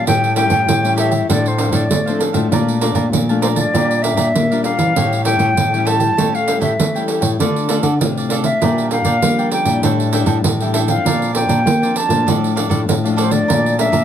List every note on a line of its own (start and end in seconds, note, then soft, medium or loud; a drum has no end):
0.00 0.35 G3 medium
0.00 0.35 C#4 medium
0.00 0.36 E4 medium
0.07 0.65 A2 medium
0.07 0.46 A2 medium
0.07 0.35 G4 medium
0.07 0.36 A4 medium
0.07 0.36 C#5 medium
0.07 0.35 G5 loud
0.07 0.37 G5 medium
0.07 pandeiro medium
0.24 pandeiro soft
0.36 0.78 G3 medium
0.36 0.78 C#4 medium
0.36 0.78 E4 medium
0.36 0.49 G4 medium
0.36 0.49 A4 medium
0.36 0.49 C#5 medium
0.36 0.94 G5 loud
0.36 0.50 G5 medium
0.36 pandeiro medium
0.50 0.64 A2 medium
0.50 0.60 G4 medium
0.50 0.61 A4 medium
0.50 0.61 C#5 medium
0.50 0.61 G5 medium
0.50 pandeiro medium
0.68 1.21 A2 medium
0.68 1.26 E3 medium
0.68 pandeiro medium
0.84 1.25 G3 medium
0.84 1.25 C#4 medium
0.84 1.25 E4 medium
0.84 0.96 A4 soft
0.84 0.96 C#5 soft
0.84 0.97 G5 soft
0.84 pandeiro soft
0.97 1.12 G4 medium
0.97 1.11 A4 medium
0.97 1.11 C#5 medium
0.97 1.27 E5 medium
0.97 1.10 G5 medium
0.97 pandeiro medium
1.11 1.27 A4 soft
1.11 1.27 C#5 soft
1.11 1.27 G5 soft
1.11 pandeiro medium
1.29 1.68 A2 loud
1.29 1.88 A2 medium
1.29 1.47 F3 medium
1.29 1.48 C4 medium
1.29 1.57 D4 medium
1.29 1.48 D4 medium
1.29 1.58 A4 medium
1.29 1.58 C5 medium
1.29 1.49 D5 medium
1.29 1.59 F5 medium
1.29 pandeiro medium
1.46 1.76 C5 medium
1.46 pandeiro soft
1.58 1.88 F3 medium
1.58 1.89 C4 medium
1.58 1.71 D4 soft
1.58 1.89 D4 medium
1.58 1.71 A4 medium
1.58 1.71 C5 soft
1.58 1.72 F5 medium
1.58 pandeiro medium
1.72 1.87 A2 medium
1.72 1.83 D4 medium
1.72 1.83 A4 medium
1.72 1.83 C5 medium
1.72 2.21 D5 medium
1.72 1.83 F5 medium
1.72 pandeiro medium
1.90 2.49 A2 medium
1.90 2.16 A3 loud
1.90 pandeiro medium
2.06 2.33 F3 medium
2.06 2.33 C4 medium
2.06 2.33 D4 medium
2.06 2.18 A4 soft
2.06 2.19 C5 soft
2.06 2.19 F5 soft
2.06 pandeiro soft
2.19 2.34 D4 soft
2.19 2.33 A4 soft
2.19 2.33 C5 soft
2.19 2.32 F5 medium
2.19 pandeiro medium
2.33 2.48 A2 medium
2.33 2.76 A3 medium
2.33 2.77 D4 medium
2.33 2.77 F4 medium
2.33 2.49 A4 soft
2.33 2.49 C5 soft
2.33 2.49 F5 soft
2.33 pandeiro medium
2.52 2.91 A#2 medium
2.52 3.10 A#2 medium
2.52 2.80 A#4 medium
2.52 2.81 D5 medium
2.52 2.81 F5 medium
2.52 2.82 A5 medium
2.52 pandeiro medium
2.68 pandeiro soft
2.81 3.23 A3 medium
2.81 3.23 D4 medium
2.81 3.23 F4 medium
2.81 2.94 A#4 medium
2.81 2.94 D5 medium
2.81 2.94 F5 medium
2.81 2.94 A5 medium
2.81 pandeiro medium
2.95 3.09 A#2 medium
2.95 3.05 A#4 medium
2.95 3.06 D5 medium
2.95 3.05 F5 medium
2.95 3.06 A5 medium
2.95 pandeiro medium
3.12 3.64 A#2 medium
3.12 3.72 F3 medium
3.12 pandeiro medium
3.29 3.70 A3 medium
3.29 3.70 D4 medium
3.29 3.70 F4 medium
3.29 3.41 D5 soft
3.29 3.41 F5 soft
3.29 3.42 A5 soft
3.29 pandeiro soft
3.42 3.57 A#4 medium
3.42 3.48 C5 medium
3.42 3.56 D5 medium
3.42 3.56 F5 medium
3.42 3.55 A5 medium
3.42 pandeiro medium
3.55 4.04 D5 medium
3.55 3.72 D5 soft
3.55 3.72 F5 soft
3.55 3.72 A5 soft
3.55 pandeiro medium
3.74 4.13 A#2 medium
3.74 4.32 A#2 medium
3.74 4.00 G3 medium
3.74 4.01 D4 medium
3.74 4.01 F4 medium
3.74 4.02 G4 medium
3.74 4.03 A#4 medium
3.74 4.03 D5 medium
3.74 4.04 F5 medium
3.74 pandeiro medium
3.91 pandeiro soft
4.02 4.45 G3 medium
4.02 4.46 D4 medium
4.02 4.46 F4 medium
4.02 4.15 G4 soft
4.02 4.16 A#4 medium
4.02 4.16 D5 soft
4.02 4.64 E5 medium
4.02 4.16 F5 medium
4.02 pandeiro medium
4.16 4.31 A#2 medium
4.16 4.27 G4 medium
4.16 4.27 A#4 medium
4.16 4.27 D5 medium
4.16 4.28 F5 medium
4.16 pandeiro medium
4.35 4.94 A#2 medium
4.35 4.61 A#3 medium
4.35 pandeiro medium
4.51 4.77 G3 medium
4.51 4.77 D4 medium
4.51 4.77 F4 medium
4.51 4.63 A#4 soft
4.51 4.63 D5 medium
4.51 4.64 F5 medium
4.51 pandeiro soft
4.64 4.79 G4 soft
4.64 4.77 A#4 soft
4.64 4.77 D5 soft
4.64 5.22 F5 loud
4.64 4.76 F5 medium
4.64 pandeiro medium
4.77 4.92 E3 medium
4.77 5.21 G3 medium
4.77 5.21 C#4 medium
4.77 4.94 A#4 soft
4.77 4.93 D5 soft
4.77 4.93 F5 medium
4.77 pandeiro medium
4.96 5.35 A2 medium
4.96 5.54 A2 medium
4.96 5.23 G4 medium
4.96 5.24 A4 medium
4.96 5.25 C#5 medium
4.96 5.25 G5 medium
4.96 pandeiro medium
5.13 pandeiro soft
5.25 5.67 G3 medium
5.25 5.67 C#4 medium
5.25 5.67 E4 medium
5.25 5.37 G4 medium
5.25 5.38 A4 medium
5.25 5.38 C#5 medium
5.25 5.88 G5 loud
5.25 5.38 G5 medium
5.25 pandeiro medium
5.39 5.53 A2 medium
5.39 5.49 G4 medium
5.39 5.49 A4 medium
5.39 5.50 C#5 medium
5.39 5.50 G5 medium
5.39 pandeiro medium
5.57 6.09 A2 medium
5.57 6.16 E3 medium
5.57 pandeiro medium
5.73 6.14 G3 medium
5.73 6.14 C#4 medium
5.73 6.15 E4 medium
5.73 5.84 A4 soft
5.73 5.85 C#5 soft
5.73 5.86 G5 medium
5.73 pandeiro soft
5.85 6.00 G4 medium
5.85 5.99 A4 medium
5.85 5.99 C#5 medium
5.85 5.98 G5 medium
5.85 6.36 A5 loud
5.85 pandeiro medium
5.99 6.16 A4 soft
5.99 6.15 C#5 soft
5.99 6.15 G5 soft
5.99 pandeiro medium
6.17 6.77 A2 medium
6.17 6.37 G3 medium
6.17 6.57 A3 loud
6.17 6.37 C#4 medium
6.17 6.37 E4 medium
6.17 6.45 G4 medium
6.17 6.46 A4 medium
6.17 6.47 C#5 medium
6.17 6.47 G5 medium
6.17 pandeiro medium
6.35 6.61 F5 loud
6.35 pandeiro soft
6.46 6.77 G3 medium
6.46 6.77 C#4 medium
6.46 6.77 E4 medium
6.46 6.59 G4 soft
6.46 6.60 A4 soft
6.46 6.60 C#5 medium
6.46 6.60 G5 medium
6.46 pandeiro medium
6.61 6.75 A2 medium
6.61 6.71 G4 medium
6.61 6.71 A4 medium
6.61 6.72 C#5 medium
6.61 7.05 E5 medium
6.61 6.72 G5 medium
6.61 pandeiro medium
6.80 7.38 E3 medium
6.80 7.05 A3 medium
6.80 pandeiro medium
6.95 7.36 G3 medium
6.95 7.37 C#4 medium
6.95 7.37 E4 medium
6.95 7.07 A4 soft
6.95 7.07 C#5 soft
6.95 7.08 G5 soft
6.95 pandeiro soft
7.08 7.23 G4 soft
7.08 7.21 A4 soft
7.08 7.21 C#5 soft
7.08 7.20 G5 soft
7.08 pandeiro medium
7.21 7.36 A2 medium
7.21 7.37 A4 soft
7.21 7.37 C#5 soft
7.21 7.37 G5 soft
7.21 pandeiro medium
7.39 7.79 D3 medium
7.39 7.98 D3 medium
7.39 7.66 A3 medium
7.39 7.68 D4 medium
7.39 7.66 D4 medium
7.39 7.67 F4 medium
7.39 7.68 A4 medium
7.39 7.69 D5 medium
7.39 7.69 F5 medium
7.39 pandeiro medium
7.56 pandeiro soft
7.69 7.88 A3 medium
7.69 7.82 D4 medium
7.69 7.89 D4 medium
7.69 7.89 F4 medium
7.69 7.82 A4 medium
7.69 7.82 D5 medium
7.69 7.83 F5 medium
7.69 pandeiro medium
7.83 8.01 D3 medium
7.83 7.94 D4 medium
7.83 7.94 A4 medium
7.83 7.94 D5 medium
7.83 7.94 F5 medium
7.83 pandeiro medium
8.01 8.60 A2 medium
8.01 8.53 C3 medium
8.01 8.41 A3 medium
8.01 8.41 D4 medium
8.01 8.41 F4 medium
8.01 pandeiro medium
8.17 8.30 A4 soft
8.17 8.30 D5 soft
8.17 8.31 F5 soft
8.17 pandeiro soft
8.29 8.45 D4 medium
8.29 8.45 A4 medium
8.29 8.35 D5 medium
8.29 8.44 D5 medium
8.29 8.44 F5 medium
8.29 pandeiro medium
8.44 8.61 A4 soft
8.44 8.60 D5 soft
8.44 8.88 E5 medium
8.44 8.60 F5 soft
8.44 pandeiro medium
8.62 9.01 A#2 medium
8.62 9.20 A#2 medium
8.62 9.02 G3 medium
8.62 8.91 D4 medium
8.62 9.02 D4 medium
8.62 9.02 F4 medium
8.62 8.91 A#4 medium
8.62 8.91 D5 medium
8.62 8.92 G5 medium
8.62 pandeiro medium
8.78 pandeiro soft
8.91 9.04 D4 soft
8.91 9.04 A#4 soft
8.91 9.04 D5 medium
8.91 9.49 F5 medium
8.91 9.04 G5 medium
8.91 pandeiro medium
9.04 9.19 A#2 medium
9.04 9.15 D4 medium
9.04 9.16 A#4 medium
9.04 9.15 D5 medium
9.04 9.16 G5 medium
9.04 pandeiro medium
9.22 9.81 F3 medium
9.22 9.64 G3 medium
9.22 9.49 A#3 loud
9.22 9.65 D4 medium
9.22 9.65 F4 medium
9.22 pandeiro medium
9.38 9.51 A#4 soft
9.38 9.51 D5 soft
9.38 9.52 G5 soft
9.38 pandeiro soft
9.51 9.66 D4 soft
9.51 9.66 A#4 soft
9.51 9.65 D5 soft
9.51 9.64 G5 medium
9.51 9.82 G5 medium
9.51 pandeiro medium
9.65 9.80 A#2 medium
9.65 10.09 G3 medium
9.65 10.09 D4 medium
9.65 10.09 E4 medium
9.65 9.82 A#4 soft
9.65 9.82 D5 soft
9.65 9.81 G5 soft
9.65 pandeiro medium
9.83 10.23 A2 medium
9.83 10.42 A2 medium
9.83 10.12 D4 medium
9.83 10.12 A4 medium
9.83 10.13 E5 medium
9.83 10.13 G5 medium
9.83 pandeiro medium
10.00 pandeiro soft
10.13 10.42 G3 medium
10.13 10.25 D4 medium
10.13 10.43 D4 medium
10.13 10.43 E4 medium
10.13 10.25 A4 medium
10.13 10.26 E5 medium
10.13 10.26 G5 medium
10.13 pandeiro medium
10.26 10.41 A2 medium
10.26 10.37 D4 medium
10.26 10.37 A4 medium
10.26 10.37 E5 medium
10.26 10.37 G5 medium
10.26 pandeiro medium
10.44 10.96 A2 medium
10.44 11.03 E3 medium
10.44 pandeiro medium
10.60 10.87 G3 medium
10.60 10.87 D4 medium
10.60 10.87 E4 medium
10.60 10.73 A4 soft
10.60 10.73 E5 soft
10.60 10.74 G5 soft
10.60 pandeiro soft
10.73 10.89 D4 medium
10.73 10.88 A4 medium
10.73 10.79 E5 medium
10.73 10.88 E5 medium
10.73 10.87 G5 medium
10.73 pandeiro medium
10.88 11.30 F3 medium
10.88 11.30 C4 medium
10.88 11.31 D4 medium
10.88 11.04 A4 soft
10.88 11.04 E5 soft
10.88 11.32 F5 medium
10.88 11.03 G5 soft
10.88 pandeiro medium
11.05 11.63 A#2 medium
11.05 11.44 A#2 loud
11.05 11.34 D4 medium
11.05 11.34 A#4 medium
11.05 11.35 C5 medium
11.05 11.35 D5 medium
11.05 pandeiro medium
11.22 pandeiro soft
11.34 11.64 F3 medium
11.34 11.64 C4 medium
11.34 11.64 D4 medium
11.34 11.47 D4 soft
11.34 11.48 A#4 soft
11.34 11.48 C5 soft
11.34 11.48 D5 medium
11.34 11.98 G5 medium
11.34 pandeiro medium
11.49 11.63 A#2 medium
11.49 11.59 D4 medium
11.49 11.59 A#4 medium
11.49 11.59 C5 medium
11.49 11.60 D5 medium
11.49 pandeiro medium
11.66 11.81 F3 medium
11.66 11.92 A#3 loud
11.66 pandeiro medium
11.82 12.08 F3 medium
11.82 12.08 C4 medium
11.82 12.08 D4 medium
11.82 11.95 A#4 soft
11.82 11.96 C5 soft
11.82 11.96 D5 soft
11.82 pandeiro soft
11.96 12.11 D4 soft
11.96 12.09 A#4 soft
11.96 12.08 C5 medium
11.96 12.08 D5 medium
11.96 12.28 A5 medium
11.96 pandeiro medium
12.09 12.23 A#2 medium
12.09 12.52 F3 medium
12.09 12.52 A3 medium
12.09 12.53 D4 medium
12.09 12.26 A#4 soft
12.09 12.25 C5 soft
12.09 12.25 D5 soft
12.09 pandeiro medium
12.27 12.67 A2 medium
12.27 12.86 A2 medium
12.27 12.54 D4 medium
12.27 12.54 A4 medium
12.27 12.55 D5 medium
12.27 12.55 F5 medium
12.27 pandeiro medium
12.44 pandeiro soft
12.55 12.99 F3 medium
12.55 12.99 A3 medium
12.55 12.68 D4 medium
12.55 12.99 D4 medium
12.55 12.68 A4 medium
12.55 12.69 D5 medium
12.55 12.69 F5 medium
12.55 pandeiro medium
12.69 12.85 A2 medium
12.69 12.80 D4 medium
12.69 12.81 A4 medium
12.69 12.81 D5 medium
12.69 12.81 F5 medium
12.69 pandeiro medium
12.88 13.40 A2 medium
12.88 13.47 A2 medium
12.88 pandeiro medium
13.04 13.30 F3 medium
13.04 13.31 A3 medium
13.04 13.31 D4 medium
13.04 13.16 A4 soft
13.04 13.16 D5 soft
13.04 13.16 F5 soft
13.04 pandeiro soft
13.16 13.32 D4 medium
13.16 13.30 A4 medium
13.16 13.33 C5 medium
13.16 13.29 D5 medium
13.16 13.28 F5 medium
13.16 pandeiro medium
13.29 13.74 F3 medium
13.29 13.74 A3 medium
13.29 13.75 D4 medium
13.29 13.47 A4 soft
13.29 13.46 D5 soft
13.29 13.79 D5 medium
13.29 13.46 F5 soft
13.29 pandeiro medium
13.48 13.89 A#2 loud
13.48 14.04 A#2 medium
13.48 13.77 A#4 medium
13.48 13.77 D5 medium
13.48 13.78 F5 medium
13.48 13.78 A5 medium
13.48 pandeiro medium
13.66 pandeiro soft
13.78 14.04 F3 medium
13.78 14.04 A3 medium
13.78 14.04 D4 medium
13.78 13.91 A#4 medium
13.78 13.91 D5 medium
13.78 14.04 E5 medium
13.78 13.91 F5 soft
13.78 13.91 A5 soft
13.78 pandeiro medium
13.92 14.04 A#2 medium
13.92 14.03 A#4 medium
13.92 14.03 D5 medium
13.92 14.03 F5 medium
13.92 14.03 A5 medium
13.92 pandeiro medium